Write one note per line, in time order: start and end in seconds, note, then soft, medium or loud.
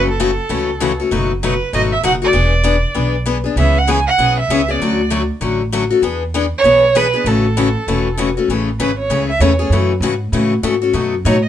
0.00 0.37 F#1 medium
0.10 0.97 A4 medium
0.20 0.30 C#3 medium
0.20 0.30 E3 medium
0.20 0.30 A3 medium
0.20 0.30 C#4 medium
0.20 0.30 F#4 medium
0.49 0.99 C#2 medium
0.49 0.69 C#3 medium
0.49 0.69 E3 medium
0.49 0.69 A3 medium
0.49 0.70 C#4 medium
0.49 0.70 F#4 medium
0.80 0.91 C#3 medium
0.80 0.91 E3 medium
0.80 0.91 A3 medium
0.80 0.92 C#4 medium
0.80 0.92 F#4 medium
1.00 1.11 A3 soft
1.00 1.11 C#4 soft
1.00 1.11 F#4 medium
1.11 1.60 F#1 medium
1.11 1.31 B2 medium
1.11 1.31 F#3 medium
1.11 1.31 A3 medium
1.11 1.31 D#4 medium
1.11 1.32 F#4 medium
1.43 1.53 B2 medium
1.43 1.53 F#3 medium
1.43 1.53 A3 medium
1.43 1.54 D#4 medium
1.43 1.54 F#4 medium
1.43 1.71 B4 medium
1.73 1.99 G#1 medium
1.73 1.93 B2 medium
1.73 1.93 F#3 medium
1.73 1.93 A3 medium
1.73 1.93 D#4 medium
1.73 1.93 F#4 medium
1.73 1.82 D#5 medium
1.93 2.03 E5 medium
2.03 2.29 F#1 medium
2.03 2.14 B2 medium
2.03 2.14 F#3 medium
2.03 2.14 A3 medium
2.03 2.15 D#4 medium
2.03 2.15 F#4 medium
2.03 2.12 F#5 loud
2.22 2.33 A3 soft
2.22 2.33 D#4 soft
2.22 2.33 F#4 medium
2.22 3.11 D5 medium
2.33 2.83 E1 medium
2.33 2.53 E3 medium
2.33 2.53 B3 medium
2.33 2.53 D4 medium
2.33 2.54 G#4 medium
2.64 2.75 E3 medium
2.64 2.75 B3 medium
2.64 2.75 D4 medium
2.64 2.76 G#4 medium
2.95 3.45 B1 medium
2.95 3.15 E3 medium
2.95 3.15 B3 medium
2.95 3.15 D4 medium
2.95 3.15 G#4 medium
3.26 3.37 E3 medium
3.26 3.37 B3 medium
3.26 3.37 D4 medium
3.26 3.37 G#4 medium
3.44 3.56 B3 soft
3.44 3.57 D4 soft
3.44 3.56 G#4 soft
3.56 4.05 C#2 medium
3.56 3.77 C#3 medium
3.56 3.77 E3 medium
3.56 3.77 B3 medium
3.56 3.77 C#4 medium
3.56 3.77 G#4 medium
3.56 3.80 E5 medium
3.78 3.91 F#5 medium
3.87 3.98 C#3 medium
3.87 3.98 E3 medium
3.87 3.99 B3 medium
3.87 3.99 C#4 medium
3.87 3.99 G#4 medium
3.87 4.06 G#5 medium
4.07 4.35 F#5 medium
4.18 4.44 B1 medium
4.18 4.38 C#3 medium
4.18 4.38 E3 medium
4.18 4.38 B3 medium
4.18 4.39 C#4 medium
4.18 4.39 G#4 medium
4.39 4.72 E5 medium
4.48 4.75 C#2 medium
4.48 4.60 C#3 medium
4.48 4.61 E3 medium
4.48 4.61 B3 medium
4.48 4.61 C#4 loud
4.48 4.61 G#4 medium
4.68 4.81 B3 soft
4.68 4.80 C#4 soft
4.68 4.80 G#4 soft
4.68 5.12 D5 medium
4.80 5.29 D2 medium
4.80 5.00 D3 medium
4.80 5.01 F#3 medium
4.80 5.01 A3 medium
4.80 5.01 C#4 medium
4.80 5.01 F#4 medium
5.10 5.21 D3 medium
5.10 5.22 F#3 medium
5.10 5.21 A3 loud
5.10 5.22 C#4 medium
5.10 5.22 F#4 medium
5.41 5.90 A1 medium
5.41 5.61 D3 medium
5.41 5.61 F#3 medium
5.41 5.61 A3 medium
5.41 5.62 C#4 medium
5.41 5.61 F#4 medium
5.72 5.83 D3 medium
5.72 5.83 F#3 medium
5.72 5.83 A3 loud
5.72 5.83 C#4 medium
5.72 5.84 F#4 loud
5.90 6.03 A3 soft
5.90 6.02 C#4 soft
5.90 6.02 F#4 medium
6.02 6.51 E2 medium
6.02 6.22 E3 medium
6.02 6.23 B3 medium
6.02 6.22 D4 medium
6.02 6.23 G#4 medium
6.34 6.45 E3 medium
6.34 6.45 B3 medium
6.34 6.45 D4 medium
6.34 6.45 G#4 medium
6.58 6.98 C#5 loud
6.63 7.13 B1 medium
6.63 6.84 E3 medium
6.63 6.84 B3 medium
6.63 6.84 D4 medium
6.63 6.85 G#4 medium
6.95 7.06 E3 medium
6.95 7.06 B3 medium
6.95 7.06 D4 medium
6.95 7.06 G#4 loud
6.95 7.28 B4 medium
7.14 7.26 B3 soft
7.14 7.26 D4 soft
7.14 7.25 G#4 medium
7.24 7.74 A1 medium
7.24 7.46 C#3 medium
7.24 7.45 E3 medium
7.24 7.46 A3 medium
7.24 7.46 C#4 medium
7.24 7.46 F#4 medium
7.24 8.18 A4 medium
7.57 7.67 C#3 medium
7.57 7.67 E3 medium
7.57 7.68 A3 medium
7.57 7.68 C#4 medium
7.57 7.68 F#4 medium
7.87 8.36 E1 medium
7.87 8.07 C#3 medium
7.87 8.07 E3 medium
7.87 8.07 A3 medium
7.87 8.07 C#4 medium
7.87 8.08 F#4 medium
8.17 8.28 C#3 medium
8.17 8.29 E3 medium
8.17 8.29 A3 medium
8.17 8.29 C#4 medium
8.17 8.29 F#4 medium
8.37 8.49 A3 soft
8.37 8.49 C#4 soft
8.37 8.48 F#4 medium
8.48 8.78 A1 medium
8.48 8.69 C#3 medium
8.48 8.69 E3 medium
8.48 8.69 A3 medium
8.48 8.69 C#4 medium
8.48 8.69 G#4 medium
8.79 9.09 G#1 medium
8.79 8.90 C#3 medium
8.79 8.90 E3 medium
8.79 8.90 A3 medium
8.79 8.90 C#4 medium
8.79 8.91 G#4 medium
8.79 8.96 B4 medium
8.98 9.26 C#5 medium
9.10 9.39 C#2 medium
9.10 9.30 C#3 medium
9.10 9.30 E3 medium
9.10 9.30 A3 medium
9.10 9.30 C#4 medium
9.10 9.30 G#4 medium
9.29 9.42 E5 medium
9.40 9.69 E2 medium
9.40 9.51 C#3 medium
9.40 9.52 E3 medium
9.40 9.52 A3 medium
9.40 9.52 C#4 medium
9.40 9.52 G#4 medium
9.40 9.71 C#5 medium
9.59 9.72 A3 soft
9.59 9.71 C#4 soft
9.59 9.71 G#4 medium
9.70 10.00 F#2 medium
9.70 9.91 C#3 medium
9.70 9.92 E3 medium
9.70 9.92 A3 medium
9.70 9.92 C#4 medium
9.70 9.92 F#4 medium
10.00 10.31 G#2 medium
10.00 10.13 C#3 medium
10.00 10.13 E3 medium
10.00 10.13 A3 medium
10.00 10.13 C#4 medium
10.00 10.14 F#4 medium
10.32 10.62 A2 medium
10.32 10.52 C#3 medium
10.32 10.53 E3 medium
10.32 10.53 A3 medium
10.32 10.53 C#4 medium
10.32 10.53 F#4 medium
10.63 10.93 G#2 medium
10.63 10.74 C#3 medium
10.63 10.74 E3 medium
10.63 10.74 A3 medium
10.63 10.74 C#4 medium
10.63 10.75 F#4 medium
10.82 10.93 A3 soft
10.82 10.94 C#4 medium
10.82 10.93 F#4 medium
10.93 11.23 F#2 medium
10.93 11.13 B2 medium
10.93 11.14 F#3 medium
10.93 11.14 A3 medium
10.93 11.14 D#4 medium
10.93 11.14 F#4 medium
11.25 11.48 A2 medium
11.25 11.36 B2 medium
11.25 11.36 F#3 medium
11.25 11.36 A3 medium
11.25 11.36 D#4 medium
11.25 11.36 F#4 medium
11.25 11.43 C#5 medium
11.44 11.48 D#5 medium